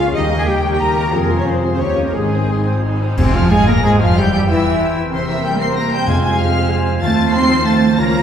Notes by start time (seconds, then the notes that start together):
Already playing: C#2 C#3 A#3 C#4 F4 G#4 A#4 F5
0.00 C#5 C#6
0.13 D#2 D#3 G3 D#4 G4 D#5 D#6
0.30 A#3 C#4 A#4 C#6
0.38 G#4 G#5
0.46 D#2 G3 D#4 G4 A#4 G5 D#6
0.62 A#3 A#4 C#5 C#6
0.71 G4 G5
0.79 D#2 G3 G4 A#4 G5 A#5 D#6
0.95 A#3 A#4 C#5 C#6
1.11 F2 C3 F3 A#3 C4 F4 G#4 A#4 G#5
1.29 G#3 F4 C6
1.37 C#4 C#5
1.45 F2 F3 C4 G#4 C5 G#5
1.62 G#3 F4 F5 C6
1.70 C4 C5
1.78 D#2 D#3 G3 A#3 C#4 G4 C#5 C#6
1.96 A#3 G4 A#4 D#6
2.04 A#3 A#4
2.12 G#1 G#2 G#3 C4 D#4 G#4 C6
2.31 C4 D#4 C5 D#6
2.48 G#1 C4 D#4 G#4 C5 C6
2.66 C4 C5 D#5 D#6
2.76 F4
2.83 G#1 D#4 G#4 G#5 C6
3.01 C4 C5 D#5 D#6
3.11 D#4
3.17 C2 F2 C3 F3 C4 C5 G#5 C6, concert bass drum, crash
3.25 C4
3.33 F2 F3 F4 F5 F6
3.42 G#4
3.50 G#2 G#3 G#4 F5 G#5 G#6
3.58 F5
3.67 A#2 A#3 A#4 A#5 A#6
3.83 G#2 G#3 G#4 C5 G#5 G#6
3.91 C5
3.99 F2 F3 F4 G#4 F5 F6
4.07 F4
4.15 G2 E3 G3 G4 E5 G5 G6
4.24 E4
4.32 G2 G3 C4 G4 G5 G6
4.40 G4
4.48 E2 E3 E4 C5 E5 G5 E6
4.57 G4
4.65 G5
4.73 C6
4.80 G5
4.89 C5
4.97 G4
5.04 C4
5.12 E2 C3 E3 A#3 C4 G4 A#4 C5 E5 C6
5.21 E4
5.28 E3 A#3 E5 E6
5.37 G4
5.44 G3 E5 G5 G6
5.53 A#4
5.59 C4 C6 C7
5.68 C6
5.75 A#3 G5 A#5 A#6
5.83 C5
5.91 G3 G4 G5 G6
5.99 A#3
6.06 F2 F3 G#3 F4 G#4 F5 G#5 G#6
6.15 G#3
6.22 G#3 F4 G#5 G#6
6.38 F3 G#4 F5 F6
6.54 C6
6.62 G#5
6.70 G#5 C6
6.78 G#4
6.86 C5
6.94 F4
7.01 D#2 D#3 F3 A3 C4 F4 C5 F5 A5 A6
7.10 D#4
7.18 F3
7.26 F4
7.33 C4 C5 C6 C7
7.42 F4
7.58 C6
7.65 A3 C5 F5 A5 A6
7.74 C5
7.89 F3
7.97 C#2 C#3 A#3 C#4 F4 A#4 C#5 A#5 A#6
8.06 C#4
8.14 F3